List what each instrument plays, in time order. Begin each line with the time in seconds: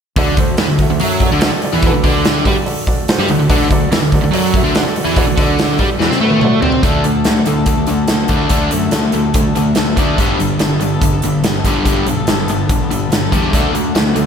0.16 picked electric bass D2, overdriven electric guitar D3, upright piano F#4 A4 D5, kick, open hi-hat
0.37 picked electric bass D2, overdriven electric guitar D3, upright piano F#4 A4 C5, kick, open hi-hat
0.57 picked electric bass E2, overdriven electric guitar E3, upright piano F#4 A4, snare, open hi-hat
0.69 picked electric bass D2, overdriven electric guitar D3
0.79 upright piano F#4 A4 E5, kick, open hi-hat
0.90 picked electric bass D2, overdriven electric guitar D3
1.00 picked electric bass F#2, overdriven electric guitar F#3, upright piano F#4 A4 E5, open hi-hat
1.20 upright piano F#4 A4 D5, kick, open hi-hat
1.32 picked electric bass D2, overdriven electric guitar D3
1.41 upright piano F#4 A4 D5, snare, open hi-hat
1.52 muted overdriven electric guitar stroke, muted picked electric bass stroke
1.62 upright piano F#4 A4 D5, open hi-hat
1.73 picked electric bass E2, overdriven electric guitar E3
1.82 upright piano F#4 A4, kick, open hi-hat
1.86 upright piano B4
1.93 picked electric bass D2, overdriven electric guitar D3
2.04 picked electric bass D2, overdriven electric guitar D3, upright piano F#4 A4 D5, kick, open hi-hat
2.25 upright piano F#4 A4 D5, snare, open hi-hat
2.45 picked electric bass G2, overdriven electric guitar G3, upright piano F#4 A4 D5, kick, open hi-hat
2.66 upright piano F#4 A4 D5, open hi-hat
2.87 upright piano F#4 A4 D5, kick, open hi-hat
3.08 upright piano F#4 A4 C5 D5, snare, open hi-hat
3.19 picked electric bass G2, overdriven electric guitar G3, snare
3.28 picked electric bass D2, overdriven electric guitar D3, upright piano F#4 A4 D5 F#5, open hi-hat
3.39 picked electric bass D2, overdriven electric guitar D3
3.49 picked electric bass D2, overdriven electric guitar D3, upright piano F#4 A4 D5, kick, open hi-hat
3.62 snare
3.70 picked electric bass D2, overdriven electric guitar D3, upright piano F#4 A4 D5, kick, open hi-hat
3.90 picked electric bass E2, overdriven electric guitar E3, upright piano F#4 A4 B4, snare, open hi-hat
4.00 picked electric bass D2, overdriven electric guitar D3
4.12 upright piano F#4 A4 D5, kick, open hi-hat
4.22 picked electric bass D2, overdriven electric guitar D3
4.33 picked electric bass F#2, overdriven electric guitar F#3, upright piano F#4 A4 D5, open hi-hat
4.54 upright piano F#4 A4 E5, kick, open hi-hat
4.64 picked electric bass D2, overdriven electric guitar D3
4.75 upright piano F#4 A4 D5, snare, open hi-hat
4.85 muted overdriven electric guitar stroke, muted picked electric bass stroke, snare
4.96 upright piano F#4 A4 D5, open hi-hat
5.05 picked electric bass E2, overdriven electric guitar E3
5.17 upright piano F#4 A4 D5, kick, open hi-hat
5.27 picked electric bass D2, overdriven electric guitar D3
5.37 picked electric bass D2, overdriven electric guitar D3, upright piano F#4 A4 D5, kick, open hi-hat
5.59 upright piano F#4 A4 D5, snare, open hi-hat
5.79 picked electric bass G2, overdriven electric guitar G3, upright piano F#4 A4 D5, kick, open hi-hat
5.99 picked electric bass E2, overdriven electric guitar E3, upright piano F#4 A4 D5, snare
6.10 picked electric bass C3, overdriven electric guitar C4, snare
6.20 picked electric bass A2, overdriven electric guitar A3, upright piano F#4 A4 B4
6.30 high tom
6.41 upright piano F#4 A4 D5, mid tom
6.62 picked electric bass C3, overdriven electric guitar C4, upright piano F#4 A4 D5, floor tom
6.72 floor tom
6.83 picked electric bass D2, steel-string acoustic guitar D3 D4 F#4 A4, overdriven electric guitar D3 A3 D4, kick, closed hi-hat
7.04 picked electric bass D2, steel-string acoustic guitar D3 D4 F#4 A4, overdriven electric guitar D3 A3, closed hi-hat
7.15 steel-string acoustic guitar D4 F#4 A4
7.24 picked electric bass D2, overdriven electric guitar D3 A3, steel-string acoustic guitar D3 D4 F#4 A4, snare, closed hi-hat
7.35 steel-string acoustic guitar D4 F#4 A4
7.46 picked electric bass D2, steel-string acoustic guitar D3 D4 F#4 A4, overdriven electric guitar D3 A3, closed hi-hat
7.57 steel-string acoustic guitar D4 F#4 A4
7.66 picked electric bass D2, overdriven electric guitar D3 A3, kick, closed hi-hat
7.77 steel-string acoustic guitar D4 F#4 A4
7.86 picked electric bass D2, steel-string acoustic guitar D3 D4 F#4 A4, overdriven electric guitar D3 A3, closed hi-hat
8.08 picked electric bass D2, overdriven electric guitar D3 A3, steel-string acoustic guitar D3 D4 F#4 A4, snare, closed hi-hat
8.28 picked electric bass D2, overdriven electric guitar D3 A3 D4, steel-string acoustic guitar D3 D4, kick, closed hi-hat
8.33 steel-string acoustic guitar F#4 A4
8.49 picked electric bass D2, overdriven electric guitar D3 A3 D4, steel-string acoustic guitar D3 D4 F#4 A4, kick, closed hi-hat
8.71 picked electric bass F#2, steel-string acoustic guitar D3 D4 F#4 A4, overdriven electric guitar D3 A3, closed hi-hat
8.83 steel-string acoustic guitar D4 F#4 A4
8.91 picked electric bass D2, overdriven electric guitar D3 A3, steel-string acoustic guitar D3 D4 F#4 A4, snare, closed hi-hat
9.03 steel-string acoustic guitar D4 F#4 A4
9.12 picked electric bass D2, steel-string acoustic guitar D3 D4 F#4 A4, overdriven electric guitar D3 A3, closed hi-hat
9.23 steel-string acoustic guitar D4 F#4 A4
9.34 picked electric bass D2, overdriven electric guitar D3 A3, kick, closed hi-hat
9.44 steel-string acoustic guitar D4 F#4 A4
9.55 picked electric bass D2, steel-string acoustic guitar D3 D4 F#4 A4, overdriven electric guitar D3 A3, closed hi-hat
9.75 picked electric bass D2, steel-string acoustic guitar D3 D4 F#4 A4, overdriven electric guitar D3 A3, snare, closed hi-hat
9.87 steel-string acoustic guitar D4 F#4 A4
9.97 picked electric bass D2, overdriven electric guitar D3 A3 D4, steel-string acoustic guitar D3 D4 F#4, kick, closed hi-hat
10.02 steel-string acoustic guitar A4
10.18 picked electric bass G1, overdriven electric guitar G2 D3 G3, steel-string acoustic guitar G3 B3 D4 A4, kick, closed hi-hat
10.40 picked electric bass G1, overdriven electric guitar G2 D3, steel-string acoustic guitar G3 B3 D4 A4, closed hi-hat
10.50 steel-string acoustic guitar B3 D4 A4
10.59 picked electric bass G1, overdriven electric guitar G2 D3, steel-string acoustic guitar G3 B3 D4 A4, snare, closed hi-hat
10.71 steel-string acoustic guitar B3 D4 A4
10.81 picked electric bass G1, overdriven electric guitar G2 D3, steel-string acoustic guitar G3 B3 D4, closed hi-hat
10.85 steel-string acoustic guitar A4
10.94 steel-string acoustic guitar B3 D4 A4
11.01 picked electric bass G1, overdriven electric guitar G2 D3, kick, closed hi-hat
11.13 steel-string acoustic guitar B3 D4 A4
11.22 picked electric bass G1, overdriven electric guitar G2 D3, steel-string acoustic guitar G3 B3 D4, closed hi-hat
11.26 steel-string acoustic guitar A4
11.44 picked electric bass G1, overdriven electric guitar G2 D3, steel-string acoustic guitar G3 B3 D4 A4, snare, closed hi-hat
11.54 steel-string acoustic guitar B3 A4
11.59 steel-string acoustic guitar D4
11.64 picked electric bass G1, overdriven electric guitar G2 D3 G3, steel-string acoustic guitar G3 B3 D4 A4, kick, closed hi-hat
11.85 picked electric bass G1, overdriven electric guitar G2 D3 G3, steel-string acoustic guitar G3 B3 D4 A4, kick, closed hi-hat
12.06 picked electric bass B1, overdriven electric guitar G2 D3, steel-string acoustic guitar G3 B3 D4 A4, closed hi-hat
12.17 steel-string acoustic guitar B3 D4 A4
12.27 picked electric bass G1, overdriven electric guitar G2 D3, steel-string acoustic guitar G3 B3 D4 A4, snare, closed hi-hat
12.40 steel-string acoustic guitar B3 D4 A4
12.47 picked electric bass G1, overdriven electric guitar G2 D3, steel-string acoustic guitar G3 D4, closed hi-hat
12.52 steel-string acoustic guitar B3 A4
12.59 steel-string acoustic guitar B3 D4 A4
12.69 picked electric bass G1, overdriven electric guitar G2 D3, kick, closed hi-hat
12.81 steel-string acoustic guitar B3 D4 A4
12.89 picked electric bass G1, overdriven electric guitar G2 D3, steel-string acoustic guitar G3 D4, closed hi-hat
12.93 steel-string acoustic guitar B3 A4
13.10 picked electric bass G1, overdriven electric guitar G2 D3, steel-string acoustic guitar G3 B3 D4 A4, snare, closed hi-hat
13.21 steel-string acoustic guitar B3 D4 A4
13.32 picked electric bass E2, overdriven electric guitar G2 D3 G3, steel-string acoustic guitar G3 B3 D4, kick, closed hi-hat
13.37 steel-string acoustic guitar A4
13.52 picked electric bass D2, overdriven electric guitar D3 A3 D4, steel-string acoustic guitar D3 A3, kick, closed hi-hat
13.57 steel-string acoustic guitar D4 F#4
13.73 picked electric bass D2, overdriven electric guitar D3 A3, steel-string acoustic guitar D3 A3 D4, closed hi-hat
13.77 steel-string acoustic guitar F#4
13.84 steel-string acoustic guitar A3 D4 F#4
13.95 picked electric bass D2, overdriven electric guitar D3 A3, steel-string acoustic guitar D3 A3 D4 F#4, snare, closed hi-hat
14.07 steel-string acoustic guitar A3 D4 F#4
14.16 picked electric bass D2, overdriven electric guitar D3 A3, steel-string acoustic guitar D3 A3, closed hi-hat
14.20 steel-string acoustic guitar D4 F#4